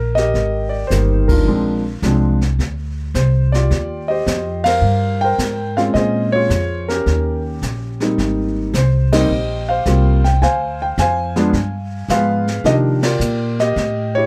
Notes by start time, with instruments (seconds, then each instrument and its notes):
Already playing: upright bass A#1, grand piano A#4
0.15 grand piano G4 A#4 D#5, snare
0.34 upright bass G#1, brush sweep, kick, snare
0.69 grand piano D5
0.87 upright bass G1, grand piano C5, kick, snare, hi-hat pedal
0.92 grand piano D#3 G3 A#3 D#4
1.28 grand piano D4 F4 A#4, kick, crash
1.45 upright bass A#1, grand piano F3 G#3 C4 D4, brush sweep
2.02 upright bass C2, grand piano F3 G#3 C4 D4, kick, snare, hi-hat pedal
2.41 snare
2.59 upright bass D2, brush sweep, kick, snare
3.14 upright bass C2, grand piano C5, kick, snare, hi-hat pedal
3.52 grand piano F4 G4 D5, snare
3.70 upright bass D#2, brush sweep, kick, snare
4.08 grand piano G4 C5 D#5
4.27 upright bass F2, kick, snare, hi-hat pedal
4.64 grand piano A#4 C5 F5, snare, ride
4.81 upright bass G2, brush sweep
5.21 grand piano A#4 C5 G5
5.38 upright bass G#2, kick, snare, hi-hat pedal
5.77 grand piano G#3 C4 C#4 F4 F5, snare
5.94 upright bass A#2, grand piano G#4 C5 D#5, brush sweep, kick, snare
6.32 grand piano F4 G#4 C#5
6.50 upright bass F2, kick, snare, hi-hat pedal
6.88 grand piano C#4 G4 A#4, snare
7.06 upright bass D#2, brush sweep, kick, snare
7.62 upright bass A#1, kick, snare, hi-hat pedal
8.00 grand piano G3 A#3 C4 D#4, snare
8.18 upright bass G#1, brush sweep, kick, snare
8.74 upright bass C2, grand piano C5, kick, snare, hi-hat pedal
9.13 grand piano G3 A#3 C4 D#4 G4 C5 D#5, snare, ride
9.29 upright bass A#1, brush sweep
9.69 grand piano C5 F5
9.86 upright bass C2, grand piano G3 A#3 C4 F4, kick, snare, hi-hat pedal
10.24 grand piano G5, snare
10.42 upright bass D2, grand piano C5 F5 G#5, brush sweep, kick, snare
10.82 grand piano G5
10.98 upright bass F2, grand piano C5 F5 G#5, kick, snare, hi-hat pedal
11.36 grand piano F3 G#3 B3 D4, snare
11.53 upright bass G2, brush sweep, kick, snare
12.08 upright bass G#2, grand piano F3 G#3 B3 F4 G#4 B4 F5, kick, snare, hi-hat pedal
12.47 snare
12.64 upright bass C3, grand piano D#3 F3 A#3 D4 G4 A#4 D#5, brush sweep, kick, snare
13.03 grand piano F4 A#4 D5, snare, ride
13.20 upright bass A#2, hi-hat pedal
13.59 grand piano G4 D#5, snare
13.76 upright bass A2, brush sweep, kick, snare
14.15 grand piano E4 G4 C#5